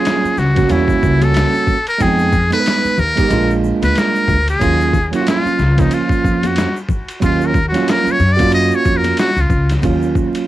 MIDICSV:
0, 0, Header, 1, 6, 480
1, 0, Start_track
1, 0, Key_signature, -6, "minor"
1, 0, Tempo, 652174
1, 1476, Time_signature, 4, 2, 24, 8
1, 7708, End_track
2, 0, Start_track
2, 0, Title_t, "Muted trumpet"
2, 0, Program_c, 0, 59
2, 0, Note_on_c, 0, 68, 94
2, 283, Note_on_c, 0, 66, 86
2, 294, Note_off_c, 0, 68, 0
2, 525, Note_on_c, 0, 64, 86
2, 536, Note_off_c, 0, 66, 0
2, 907, Note_on_c, 0, 69, 103
2, 918, Note_off_c, 0, 64, 0
2, 1379, Note_off_c, 0, 69, 0
2, 1384, Note_on_c, 0, 70, 100
2, 1486, Note_on_c, 0, 68, 105
2, 1498, Note_off_c, 0, 70, 0
2, 1858, Note_off_c, 0, 68, 0
2, 1862, Note_on_c, 0, 71, 108
2, 2204, Note_on_c, 0, 70, 106
2, 2215, Note_off_c, 0, 71, 0
2, 2615, Note_off_c, 0, 70, 0
2, 2823, Note_on_c, 0, 71, 98
2, 2931, Note_on_c, 0, 70, 105
2, 2942, Note_off_c, 0, 71, 0
2, 3303, Note_off_c, 0, 70, 0
2, 3309, Note_on_c, 0, 68, 101
2, 3753, Note_off_c, 0, 68, 0
2, 3792, Note_on_c, 0, 66, 84
2, 3878, Note_off_c, 0, 66, 0
2, 3892, Note_on_c, 0, 65, 92
2, 4267, Note_on_c, 0, 63, 78
2, 4278, Note_off_c, 0, 65, 0
2, 4368, Note_on_c, 0, 65, 89
2, 4379, Note_off_c, 0, 63, 0
2, 4757, Note_on_c, 0, 66, 77
2, 4768, Note_off_c, 0, 65, 0
2, 4986, Note_off_c, 0, 66, 0
2, 5331, Note_on_c, 0, 65, 90
2, 5492, Note_on_c, 0, 70, 87
2, 5503, Note_off_c, 0, 65, 0
2, 5644, Note_off_c, 0, 70, 0
2, 5655, Note_on_c, 0, 66, 86
2, 5813, Note_on_c, 0, 70, 96
2, 5824, Note_off_c, 0, 66, 0
2, 5970, Note_on_c, 0, 73, 89
2, 5981, Note_off_c, 0, 70, 0
2, 6125, Note_on_c, 0, 74, 98
2, 6136, Note_off_c, 0, 73, 0
2, 6281, Note_off_c, 0, 74, 0
2, 6286, Note_on_c, 0, 75, 101
2, 6442, Note_on_c, 0, 73, 100
2, 6453, Note_off_c, 0, 75, 0
2, 6600, Note_on_c, 0, 70, 88
2, 6611, Note_off_c, 0, 73, 0
2, 6758, Note_off_c, 0, 70, 0
2, 6765, Note_on_c, 0, 66, 94
2, 6920, Note_on_c, 0, 65, 80
2, 6931, Note_off_c, 0, 66, 0
2, 7158, Note_off_c, 0, 65, 0
2, 7708, End_track
3, 0, Start_track
3, 0, Title_t, "Tine electric piano"
3, 0, Program_c, 1, 4
3, 0, Note_on_c, 1, 54, 70
3, 0, Note_on_c, 1, 58, 62
3, 0, Note_on_c, 1, 61, 64
3, 0, Note_on_c, 1, 65, 81
3, 250, Note_off_c, 1, 54, 0
3, 254, Note_off_c, 1, 58, 0
3, 259, Note_off_c, 1, 61, 0
3, 262, Note_off_c, 1, 65, 0
3, 404, Note_on_c, 1, 54, 70
3, 410, Note_on_c, 1, 58, 64
3, 422, Note_on_c, 1, 61, 66
3, 430, Note_on_c, 1, 66, 79
3, 500, Note_off_c, 1, 58, 0
3, 501, Note_on_c, 1, 55, 72
3, 509, Note_off_c, 1, 61, 0
3, 509, Note_on_c, 1, 58, 68
3, 510, Note_off_c, 1, 54, 0
3, 517, Note_on_c, 1, 61, 71
3, 519, Note_off_c, 1, 66, 0
3, 528, Note_on_c, 1, 66, 76
3, 1285, Note_off_c, 1, 55, 0
3, 1289, Note_off_c, 1, 58, 0
3, 1293, Note_off_c, 1, 61, 0
3, 1298, Note_off_c, 1, 66, 0
3, 1459, Note_on_c, 1, 56, 77
3, 1468, Note_on_c, 1, 59, 70
3, 1476, Note_on_c, 1, 63, 65
3, 1485, Note_on_c, 1, 79, 84
3, 1723, Note_off_c, 1, 56, 0
3, 1728, Note_off_c, 1, 59, 0
3, 1732, Note_off_c, 1, 63, 0
3, 1736, Note_off_c, 1, 79, 0
3, 1840, Note_on_c, 1, 56, 69
3, 1849, Note_on_c, 1, 59, 65
3, 1860, Note_on_c, 1, 63, 66
3, 1867, Note_on_c, 1, 69, 62
3, 1901, Note_off_c, 1, 69, 0
3, 1916, Note_on_c, 1, 71, 75
3, 2170, Note_off_c, 1, 56, 0
3, 2175, Note_off_c, 1, 59, 0
3, 2180, Note_off_c, 1, 63, 0
3, 2208, Note_off_c, 1, 71, 0
3, 2322, Note_on_c, 1, 56, 72
3, 2332, Note_on_c, 1, 59, 63
3, 2339, Note_on_c, 1, 63, 68
3, 2349, Note_on_c, 1, 67, 78
3, 2410, Note_off_c, 1, 56, 0
3, 2419, Note_on_c, 1, 56, 74
3, 2428, Note_on_c, 1, 58, 70
3, 2434, Note_off_c, 1, 59, 0
3, 2438, Note_off_c, 1, 63, 0
3, 2438, Note_on_c, 1, 62, 67
3, 2443, Note_off_c, 1, 67, 0
3, 2446, Note_on_c, 1, 65, 82
3, 3204, Note_off_c, 1, 56, 0
3, 3208, Note_off_c, 1, 58, 0
3, 3213, Note_off_c, 1, 62, 0
3, 3217, Note_off_c, 1, 65, 0
3, 3382, Note_on_c, 1, 54, 75
3, 3389, Note_on_c, 1, 58, 69
3, 3399, Note_on_c, 1, 61, 70
3, 3408, Note_on_c, 1, 65, 81
3, 3645, Note_off_c, 1, 54, 0
3, 3648, Note_off_c, 1, 58, 0
3, 3654, Note_off_c, 1, 61, 0
3, 3658, Note_off_c, 1, 65, 0
3, 3763, Note_on_c, 1, 54, 72
3, 3773, Note_on_c, 1, 58, 66
3, 3782, Note_on_c, 1, 61, 67
3, 3789, Note_on_c, 1, 64, 63
3, 3822, Note_off_c, 1, 64, 0
3, 3837, Note_on_c, 1, 65, 81
3, 4092, Note_off_c, 1, 54, 0
3, 4097, Note_off_c, 1, 58, 0
3, 4101, Note_off_c, 1, 61, 0
3, 4129, Note_off_c, 1, 65, 0
3, 4242, Note_on_c, 1, 53, 71
3, 4251, Note_on_c, 1, 58, 70
3, 4259, Note_on_c, 1, 61, 65
3, 4267, Note_on_c, 1, 65, 79
3, 4918, Note_off_c, 1, 53, 0
3, 4922, Note_off_c, 1, 58, 0
3, 4926, Note_off_c, 1, 61, 0
3, 4931, Note_off_c, 1, 65, 0
3, 5302, Note_on_c, 1, 54, 77
3, 5308, Note_on_c, 1, 58, 70
3, 5318, Note_on_c, 1, 61, 70
3, 5327, Note_on_c, 1, 65, 83
3, 5565, Note_off_c, 1, 54, 0
3, 5568, Note_off_c, 1, 58, 0
3, 5573, Note_off_c, 1, 61, 0
3, 5577, Note_off_c, 1, 65, 0
3, 5680, Note_on_c, 1, 54, 74
3, 5689, Note_on_c, 1, 58, 65
3, 5699, Note_on_c, 1, 61, 68
3, 5707, Note_on_c, 1, 65, 84
3, 6010, Note_off_c, 1, 54, 0
3, 6015, Note_off_c, 1, 58, 0
3, 6019, Note_off_c, 1, 61, 0
3, 6023, Note_off_c, 1, 65, 0
3, 6159, Note_on_c, 1, 66, 74
3, 6169, Note_on_c, 1, 58, 69
3, 6178, Note_on_c, 1, 61, 70
3, 6187, Note_on_c, 1, 65, 81
3, 6836, Note_off_c, 1, 66, 0
3, 6841, Note_off_c, 1, 58, 0
3, 6846, Note_off_c, 1, 61, 0
3, 6850, Note_off_c, 1, 65, 0
3, 7222, Note_on_c, 1, 54, 69
3, 7231, Note_on_c, 1, 58, 69
3, 7240, Note_on_c, 1, 61, 67
3, 7250, Note_on_c, 1, 65, 79
3, 7708, Note_off_c, 1, 54, 0
3, 7708, Note_off_c, 1, 58, 0
3, 7708, Note_off_c, 1, 61, 0
3, 7708, Note_off_c, 1, 65, 0
3, 7708, End_track
4, 0, Start_track
4, 0, Title_t, "Upright bass"
4, 0, Program_c, 2, 32
4, 273, Note_on_c, 2, 37, 85
4, 456, Note_off_c, 2, 37, 0
4, 513, Note_on_c, 2, 40, 97
4, 696, Note_off_c, 2, 40, 0
4, 757, Note_on_c, 2, 37, 91
4, 1045, Note_off_c, 2, 37, 0
4, 1475, Note_on_c, 2, 41, 99
4, 1839, Note_off_c, 2, 41, 0
4, 2190, Note_on_c, 2, 39, 88
4, 2374, Note_off_c, 2, 39, 0
4, 2431, Note_on_c, 2, 34, 98
4, 2721, Note_off_c, 2, 34, 0
4, 2809, Note_on_c, 2, 38, 79
4, 2887, Note_off_c, 2, 38, 0
4, 3148, Note_on_c, 2, 38, 95
4, 3333, Note_off_c, 2, 38, 0
4, 3394, Note_on_c, 2, 39, 103
4, 3759, Note_off_c, 2, 39, 0
4, 4113, Note_on_c, 2, 37, 97
4, 4296, Note_off_c, 2, 37, 0
4, 4596, Note_on_c, 2, 41, 88
4, 4884, Note_off_c, 2, 41, 0
4, 5314, Note_on_c, 2, 39, 106
4, 5679, Note_off_c, 2, 39, 0
4, 6032, Note_on_c, 2, 42, 91
4, 6397, Note_off_c, 2, 42, 0
4, 6518, Note_on_c, 2, 41, 92
4, 6699, Note_off_c, 2, 41, 0
4, 6892, Note_on_c, 2, 37, 80
4, 6970, Note_off_c, 2, 37, 0
4, 6990, Note_on_c, 2, 37, 85
4, 7174, Note_off_c, 2, 37, 0
4, 7236, Note_on_c, 2, 39, 99
4, 7524, Note_off_c, 2, 39, 0
4, 7708, End_track
5, 0, Start_track
5, 0, Title_t, "Muted upright bass strokes"
5, 171, Note_on_c, 9, 29, 40
5, 245, Note_off_c, 9, 29, 0
5, 2091, Note_on_c, 9, 29, 44
5, 2165, Note_off_c, 9, 29, 0
5, 4010, Note_on_c, 9, 29, 42
5, 4084, Note_off_c, 9, 29, 0
5, 5930, Note_on_c, 9, 29, 43
5, 6003, Note_off_c, 9, 29, 0
5, 7708, End_track
6, 0, Start_track
6, 0, Title_t, "Drums"
6, 38, Note_on_c, 9, 44, 49
6, 38, Note_on_c, 9, 51, 64
6, 43, Note_on_c, 9, 82, 61
6, 50, Note_on_c, 9, 38, 100
6, 112, Note_off_c, 9, 44, 0
6, 112, Note_off_c, 9, 51, 0
6, 116, Note_off_c, 9, 82, 0
6, 123, Note_off_c, 9, 38, 0
6, 183, Note_on_c, 9, 82, 47
6, 257, Note_off_c, 9, 82, 0
6, 275, Note_on_c, 9, 64, 55
6, 275, Note_on_c, 9, 82, 41
6, 283, Note_on_c, 9, 38, 34
6, 349, Note_off_c, 9, 64, 0
6, 349, Note_off_c, 9, 82, 0
6, 356, Note_off_c, 9, 38, 0
6, 414, Note_on_c, 9, 51, 56
6, 421, Note_on_c, 9, 63, 50
6, 421, Note_on_c, 9, 82, 47
6, 422, Note_on_c, 9, 36, 98
6, 434, Note_on_c, 9, 38, 34
6, 488, Note_off_c, 9, 51, 0
6, 495, Note_off_c, 9, 63, 0
6, 495, Note_off_c, 9, 82, 0
6, 496, Note_off_c, 9, 36, 0
6, 507, Note_off_c, 9, 38, 0
6, 509, Note_on_c, 9, 82, 54
6, 512, Note_on_c, 9, 51, 62
6, 582, Note_off_c, 9, 82, 0
6, 585, Note_off_c, 9, 51, 0
6, 646, Note_on_c, 9, 36, 97
6, 656, Note_on_c, 9, 82, 44
6, 720, Note_off_c, 9, 36, 0
6, 730, Note_off_c, 9, 82, 0
6, 758, Note_on_c, 9, 36, 86
6, 758, Note_on_c, 9, 82, 46
6, 831, Note_off_c, 9, 36, 0
6, 831, Note_off_c, 9, 82, 0
6, 895, Note_on_c, 9, 51, 58
6, 895, Note_on_c, 9, 63, 62
6, 895, Note_on_c, 9, 82, 45
6, 968, Note_off_c, 9, 63, 0
6, 968, Note_off_c, 9, 82, 0
6, 969, Note_off_c, 9, 51, 0
6, 988, Note_on_c, 9, 44, 45
6, 988, Note_on_c, 9, 51, 63
6, 1000, Note_on_c, 9, 82, 71
6, 1006, Note_on_c, 9, 38, 107
6, 1062, Note_off_c, 9, 44, 0
6, 1062, Note_off_c, 9, 51, 0
6, 1073, Note_off_c, 9, 82, 0
6, 1080, Note_off_c, 9, 38, 0
6, 1137, Note_on_c, 9, 82, 44
6, 1210, Note_off_c, 9, 82, 0
6, 1230, Note_on_c, 9, 36, 86
6, 1237, Note_on_c, 9, 64, 56
6, 1237, Note_on_c, 9, 82, 40
6, 1303, Note_off_c, 9, 36, 0
6, 1311, Note_off_c, 9, 64, 0
6, 1311, Note_off_c, 9, 82, 0
6, 1375, Note_on_c, 9, 51, 57
6, 1382, Note_on_c, 9, 82, 41
6, 1448, Note_off_c, 9, 51, 0
6, 1456, Note_off_c, 9, 82, 0
6, 1469, Note_on_c, 9, 82, 63
6, 1476, Note_on_c, 9, 36, 105
6, 1477, Note_on_c, 9, 51, 71
6, 1543, Note_off_c, 9, 82, 0
6, 1550, Note_off_c, 9, 36, 0
6, 1550, Note_off_c, 9, 51, 0
6, 1611, Note_on_c, 9, 82, 48
6, 1685, Note_off_c, 9, 82, 0
6, 1712, Note_on_c, 9, 36, 88
6, 1712, Note_on_c, 9, 64, 65
6, 1712, Note_on_c, 9, 82, 44
6, 1785, Note_off_c, 9, 64, 0
6, 1785, Note_off_c, 9, 82, 0
6, 1786, Note_off_c, 9, 36, 0
6, 1853, Note_on_c, 9, 82, 51
6, 1856, Note_on_c, 9, 51, 58
6, 1927, Note_off_c, 9, 82, 0
6, 1930, Note_off_c, 9, 51, 0
6, 1957, Note_on_c, 9, 44, 48
6, 1957, Note_on_c, 9, 51, 64
6, 1957, Note_on_c, 9, 82, 61
6, 1968, Note_on_c, 9, 38, 97
6, 2030, Note_off_c, 9, 82, 0
6, 2031, Note_off_c, 9, 44, 0
6, 2031, Note_off_c, 9, 51, 0
6, 2042, Note_off_c, 9, 38, 0
6, 2097, Note_on_c, 9, 82, 47
6, 2171, Note_off_c, 9, 82, 0
6, 2194, Note_on_c, 9, 64, 58
6, 2194, Note_on_c, 9, 82, 42
6, 2268, Note_off_c, 9, 64, 0
6, 2268, Note_off_c, 9, 82, 0
6, 2334, Note_on_c, 9, 51, 61
6, 2339, Note_on_c, 9, 63, 49
6, 2339, Note_on_c, 9, 82, 52
6, 2343, Note_on_c, 9, 36, 97
6, 2354, Note_on_c, 9, 38, 34
6, 2408, Note_off_c, 9, 51, 0
6, 2412, Note_off_c, 9, 63, 0
6, 2412, Note_off_c, 9, 82, 0
6, 2416, Note_off_c, 9, 36, 0
6, 2427, Note_off_c, 9, 38, 0
6, 2429, Note_on_c, 9, 82, 62
6, 2432, Note_on_c, 9, 51, 64
6, 2502, Note_off_c, 9, 82, 0
6, 2506, Note_off_c, 9, 51, 0
6, 2578, Note_on_c, 9, 82, 46
6, 2652, Note_off_c, 9, 82, 0
6, 2679, Note_on_c, 9, 82, 48
6, 2753, Note_off_c, 9, 82, 0
6, 2816, Note_on_c, 9, 51, 60
6, 2816, Note_on_c, 9, 63, 62
6, 2816, Note_on_c, 9, 82, 45
6, 2890, Note_off_c, 9, 51, 0
6, 2890, Note_off_c, 9, 63, 0
6, 2890, Note_off_c, 9, 82, 0
6, 2910, Note_on_c, 9, 44, 44
6, 2910, Note_on_c, 9, 51, 63
6, 2921, Note_on_c, 9, 82, 71
6, 2928, Note_on_c, 9, 38, 102
6, 2984, Note_off_c, 9, 44, 0
6, 2984, Note_off_c, 9, 51, 0
6, 2995, Note_off_c, 9, 82, 0
6, 3002, Note_off_c, 9, 38, 0
6, 3058, Note_on_c, 9, 82, 44
6, 3132, Note_off_c, 9, 82, 0
6, 3149, Note_on_c, 9, 36, 88
6, 3158, Note_on_c, 9, 64, 56
6, 3158, Note_on_c, 9, 82, 42
6, 3223, Note_off_c, 9, 36, 0
6, 3232, Note_off_c, 9, 64, 0
6, 3232, Note_off_c, 9, 82, 0
6, 3295, Note_on_c, 9, 51, 59
6, 3302, Note_on_c, 9, 82, 42
6, 3368, Note_off_c, 9, 51, 0
6, 3376, Note_off_c, 9, 82, 0
6, 3394, Note_on_c, 9, 82, 63
6, 3395, Note_on_c, 9, 36, 120
6, 3397, Note_on_c, 9, 51, 73
6, 3467, Note_off_c, 9, 82, 0
6, 3469, Note_off_c, 9, 36, 0
6, 3470, Note_off_c, 9, 51, 0
6, 3538, Note_on_c, 9, 82, 48
6, 3612, Note_off_c, 9, 82, 0
6, 3631, Note_on_c, 9, 36, 84
6, 3636, Note_on_c, 9, 64, 62
6, 3636, Note_on_c, 9, 82, 45
6, 3704, Note_off_c, 9, 36, 0
6, 3710, Note_off_c, 9, 64, 0
6, 3710, Note_off_c, 9, 82, 0
6, 3774, Note_on_c, 9, 51, 59
6, 3777, Note_on_c, 9, 82, 51
6, 3848, Note_off_c, 9, 51, 0
6, 3851, Note_off_c, 9, 82, 0
6, 3876, Note_on_c, 9, 44, 50
6, 3876, Note_on_c, 9, 51, 65
6, 3880, Note_on_c, 9, 82, 63
6, 3887, Note_on_c, 9, 38, 100
6, 3949, Note_off_c, 9, 44, 0
6, 3949, Note_off_c, 9, 51, 0
6, 3953, Note_off_c, 9, 82, 0
6, 3960, Note_off_c, 9, 38, 0
6, 4022, Note_on_c, 9, 82, 46
6, 4095, Note_off_c, 9, 82, 0
6, 4116, Note_on_c, 9, 64, 57
6, 4116, Note_on_c, 9, 82, 40
6, 4120, Note_on_c, 9, 38, 35
6, 4189, Note_off_c, 9, 64, 0
6, 4189, Note_off_c, 9, 82, 0
6, 4193, Note_off_c, 9, 38, 0
6, 4252, Note_on_c, 9, 51, 60
6, 4260, Note_on_c, 9, 36, 99
6, 4264, Note_on_c, 9, 63, 49
6, 4264, Note_on_c, 9, 82, 50
6, 4272, Note_on_c, 9, 38, 34
6, 4326, Note_off_c, 9, 51, 0
6, 4334, Note_off_c, 9, 36, 0
6, 4338, Note_off_c, 9, 63, 0
6, 4338, Note_off_c, 9, 82, 0
6, 4345, Note_off_c, 9, 38, 0
6, 4348, Note_on_c, 9, 51, 67
6, 4350, Note_on_c, 9, 82, 59
6, 4422, Note_off_c, 9, 51, 0
6, 4424, Note_off_c, 9, 82, 0
6, 4485, Note_on_c, 9, 36, 100
6, 4499, Note_on_c, 9, 82, 46
6, 4558, Note_off_c, 9, 36, 0
6, 4573, Note_off_c, 9, 82, 0
6, 4596, Note_on_c, 9, 36, 93
6, 4603, Note_on_c, 9, 82, 49
6, 4670, Note_off_c, 9, 36, 0
6, 4676, Note_off_c, 9, 82, 0
6, 4734, Note_on_c, 9, 51, 59
6, 4738, Note_on_c, 9, 63, 61
6, 4738, Note_on_c, 9, 82, 46
6, 4808, Note_off_c, 9, 51, 0
6, 4811, Note_off_c, 9, 63, 0
6, 4811, Note_off_c, 9, 82, 0
6, 4827, Note_on_c, 9, 44, 48
6, 4827, Note_on_c, 9, 51, 66
6, 4842, Note_on_c, 9, 82, 72
6, 4845, Note_on_c, 9, 38, 108
6, 4901, Note_off_c, 9, 44, 0
6, 4901, Note_off_c, 9, 51, 0
6, 4915, Note_off_c, 9, 82, 0
6, 4919, Note_off_c, 9, 38, 0
6, 4978, Note_on_c, 9, 82, 46
6, 5051, Note_off_c, 9, 82, 0
6, 5068, Note_on_c, 9, 36, 85
6, 5077, Note_on_c, 9, 64, 61
6, 5077, Note_on_c, 9, 82, 42
6, 5142, Note_off_c, 9, 36, 0
6, 5150, Note_off_c, 9, 64, 0
6, 5150, Note_off_c, 9, 82, 0
6, 5214, Note_on_c, 9, 51, 62
6, 5223, Note_on_c, 9, 82, 44
6, 5288, Note_off_c, 9, 51, 0
6, 5296, Note_off_c, 9, 82, 0
6, 5313, Note_on_c, 9, 82, 68
6, 5315, Note_on_c, 9, 36, 112
6, 5315, Note_on_c, 9, 51, 68
6, 5387, Note_off_c, 9, 82, 0
6, 5388, Note_off_c, 9, 36, 0
6, 5389, Note_off_c, 9, 51, 0
6, 5454, Note_on_c, 9, 82, 49
6, 5528, Note_off_c, 9, 82, 0
6, 5551, Note_on_c, 9, 36, 96
6, 5557, Note_on_c, 9, 64, 63
6, 5557, Note_on_c, 9, 82, 45
6, 5625, Note_off_c, 9, 36, 0
6, 5630, Note_off_c, 9, 64, 0
6, 5630, Note_off_c, 9, 82, 0
6, 5696, Note_on_c, 9, 82, 53
6, 5698, Note_on_c, 9, 51, 61
6, 5703, Note_on_c, 9, 38, 35
6, 5770, Note_off_c, 9, 82, 0
6, 5772, Note_off_c, 9, 51, 0
6, 5777, Note_off_c, 9, 38, 0
6, 5799, Note_on_c, 9, 44, 52
6, 5799, Note_on_c, 9, 51, 73
6, 5799, Note_on_c, 9, 82, 65
6, 5810, Note_on_c, 9, 38, 105
6, 5872, Note_off_c, 9, 82, 0
6, 5873, Note_off_c, 9, 44, 0
6, 5873, Note_off_c, 9, 51, 0
6, 5884, Note_off_c, 9, 38, 0
6, 5939, Note_on_c, 9, 82, 50
6, 6013, Note_off_c, 9, 82, 0
6, 6033, Note_on_c, 9, 64, 59
6, 6033, Note_on_c, 9, 82, 43
6, 6106, Note_off_c, 9, 64, 0
6, 6106, Note_off_c, 9, 82, 0
6, 6175, Note_on_c, 9, 51, 57
6, 6179, Note_on_c, 9, 63, 52
6, 6179, Note_on_c, 9, 82, 49
6, 6182, Note_on_c, 9, 36, 98
6, 6195, Note_on_c, 9, 38, 33
6, 6249, Note_off_c, 9, 51, 0
6, 6252, Note_off_c, 9, 63, 0
6, 6252, Note_off_c, 9, 82, 0
6, 6256, Note_off_c, 9, 36, 0
6, 6265, Note_on_c, 9, 82, 62
6, 6268, Note_off_c, 9, 38, 0
6, 6271, Note_on_c, 9, 51, 62
6, 6339, Note_off_c, 9, 82, 0
6, 6345, Note_off_c, 9, 51, 0
6, 6414, Note_on_c, 9, 82, 47
6, 6488, Note_off_c, 9, 82, 0
6, 6515, Note_on_c, 9, 82, 51
6, 6517, Note_on_c, 9, 36, 97
6, 6588, Note_off_c, 9, 82, 0
6, 6591, Note_off_c, 9, 36, 0
6, 6654, Note_on_c, 9, 63, 65
6, 6654, Note_on_c, 9, 82, 45
6, 6656, Note_on_c, 9, 51, 62
6, 6728, Note_off_c, 9, 63, 0
6, 6728, Note_off_c, 9, 82, 0
6, 6730, Note_off_c, 9, 51, 0
6, 6749, Note_on_c, 9, 44, 46
6, 6749, Note_on_c, 9, 51, 65
6, 6760, Note_on_c, 9, 82, 73
6, 6767, Note_on_c, 9, 38, 105
6, 6823, Note_off_c, 9, 44, 0
6, 6823, Note_off_c, 9, 51, 0
6, 6834, Note_off_c, 9, 82, 0
6, 6841, Note_off_c, 9, 38, 0
6, 6894, Note_on_c, 9, 82, 46
6, 6968, Note_off_c, 9, 82, 0
6, 6991, Note_on_c, 9, 36, 87
6, 6994, Note_on_c, 9, 64, 59
6, 6994, Note_on_c, 9, 82, 41
6, 7064, Note_off_c, 9, 36, 0
6, 7068, Note_off_c, 9, 64, 0
6, 7068, Note_off_c, 9, 82, 0
6, 7135, Note_on_c, 9, 51, 62
6, 7144, Note_on_c, 9, 82, 44
6, 7149, Note_on_c, 9, 38, 37
6, 7209, Note_off_c, 9, 51, 0
6, 7217, Note_off_c, 9, 82, 0
6, 7222, Note_off_c, 9, 38, 0
6, 7232, Note_on_c, 9, 82, 61
6, 7236, Note_on_c, 9, 36, 115
6, 7236, Note_on_c, 9, 51, 68
6, 7305, Note_off_c, 9, 82, 0
6, 7310, Note_off_c, 9, 36, 0
6, 7310, Note_off_c, 9, 51, 0
6, 7376, Note_on_c, 9, 82, 48
6, 7450, Note_off_c, 9, 82, 0
6, 7473, Note_on_c, 9, 36, 89
6, 7478, Note_on_c, 9, 82, 46
6, 7546, Note_off_c, 9, 36, 0
6, 7552, Note_off_c, 9, 82, 0
6, 7617, Note_on_c, 9, 51, 59
6, 7617, Note_on_c, 9, 82, 52
6, 7690, Note_off_c, 9, 51, 0
6, 7691, Note_off_c, 9, 82, 0
6, 7708, End_track
0, 0, End_of_file